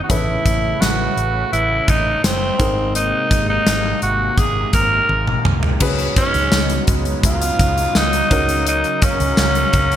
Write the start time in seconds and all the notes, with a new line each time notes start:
0.03 F#4
0.09 A1 A2 C#3 E3 A3 E4 A4 B4, kick, closed hi-hat
0.46 A1, kick, closed hi-hat
0.81 A1 F#4, snare, closed hi-hat
1.17 A1, closed hi-hat
1.52 A1 E4, closed hi-hat
1.88 A1 D#4, kick, closed hi-hat
2.24 F#1 C4, snare, closed hi-hat
2.58 G#1 G#2 C3 G#3 A#3 C4 D#4 G#4 A#4, kick, closed hi-hat
2.95 D#4, closed hi-hat
3.31 G#1, kick, closed hi-hat
3.49 D#4
3.67 G#1, snare, closed hi-hat
4.02 G#1 F#4, closed hi-hat
4.38 G#1 G#4, kick, closed hi-hat
4.73 G#1 A#4, kick, closed hi-hat
5.09 G#1, high tom
5.27 mid tom
5.45 C2, mid tom
5.63 floor tom
5.80 C#2 C#3 F#3 G#3 B3 C#4 D#4 G#4 B4, kick, crash
5.98 closed hi-hat
6.16 C#4, kick, closed hi-hat
6.34 C#2, closed hi-hat
6.52 C#2, snare, tambourine
6.70 closed hi-hat
6.87 C#2, kick, closed hi-hat
7.05 closed hi-hat
7.23 C#2 F4, kick, closed hi-hat
7.42 closed hi-hat
7.59 C#2, kick, closed hi-hat
7.78 closed hi-hat
7.95 C#2 D#4, snare, tambourine
8.13 closed hi-hat
8.30 C#2 C#3 C#4 D#4 F#4 A#4 F5, kick, closed hi-hat
8.49 closed hi-hat
8.67 D#4, closed hi-hat
8.84 closed hi-hat
9.02 C#4, kick, closed hi-hat
9.20 C#2, closed hi-hat
9.37 C#2, snare, tambourine
9.55 closed hi-hat
9.73 C#2, kick, closed hi-hat
9.92 closed hi-hat